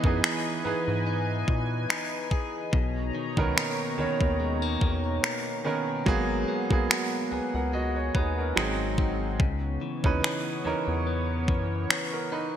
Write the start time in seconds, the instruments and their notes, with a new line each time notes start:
Already playing: grand piano E3 B3 D#4 E4 G#4 C#5, analog synth pad E3 B4 D#5 G#5, clean electric guitar E3 B3 D#4
0.04 analog synth bass F#2, grand piano E3 B3 D#4 G#4, kick
0.23 clean electric guitar D#4, finger snap
0.64 analog synth bass G#2, grand piano E3 D#4 G#4 B4, clean electric guitar B3
0.88 analog synth bass G#2
1.07 clean electric guitar D#4
1.48 analog synth bass A#2, kick
1.90 clean electric guitar D#4, finger snap
2.31 clean electric guitar G#4, kick
2.73 analog synth bass B1, clean electric guitar B2, analog synth pad B2 D#4 C#5 A#5, kick
3.15 clean electric guitar D#3
3.37 analog synth bass C#2, grand piano D#3 B3 C#4 A#4, kick
3.56 clean electric guitar A#3, finger snap
3.98 analog synth bass D#2, grand piano D#3 B3 C#4 C#5, clean electric guitar D#3
4.21 analog synth bass D#2, kick
4.40 clean electric guitar G#3
4.62 clean electric guitar A#3
4.81 analog synth bass E2, clean electric guitar D#3, kick
5.23 clean electric guitar A#3, finger snap
5.64 grand piano D#3 B3 C#4 A#4, clean electric guitar C#4
6.06 analog synth bass G#1, grand piano F#3 A#3 B3 G#4, clean electric guitar G#3, analog synth pad G#4 F#5, kick
6.48 clean electric guitar B3
6.70 analog synth bass B1, grand piano F#3 A#3 B3 G#4, kick
6.90 clean electric guitar F#4, finger snap
7.31 analog synth bass C#2, clean electric guitar B3, grand piano B4 G#5
7.54 analog synth bass C#2, grand piano A#4 F#5
7.73 clean electric guitar F#4, grand piano F#4 D#5
7.96 grand piano C#5
8.15 analog synth bass D#2, clean electric guitar B3, grand piano D#4 B4, kick
8.38 grand piano C#4 A#4
8.56 analog synth bass G#1, clean electric guitar G#2, grand piano F#3 C4 D#4 G#4, analog synth pad C4, finger snap
8.98 clean electric guitar D#4, kick
9.40 analog synth bass C#2, clean electric guitar C#3, analog synth pad B3 C#5, kick
9.81 clean electric guitar E3
10.04 analog synth bass D#2, grand piano E3 C#4 D#4 B4, kick
10.23 clean electric guitar B3, finger snap
10.65 analog synth bass E2, grand piano E3 C#4 D#4 A#4, clean electric guitar E3
10.88 analog synth bass E2
11.07 clean electric guitar B3
11.48 analog synth bass F#2, clean electric guitar E3, kick
11.90 clean electric guitar B3, finger snap
12.13 grand piano C#4 A#4
12.32 clean electric guitar D#4, grand piano D#4 B4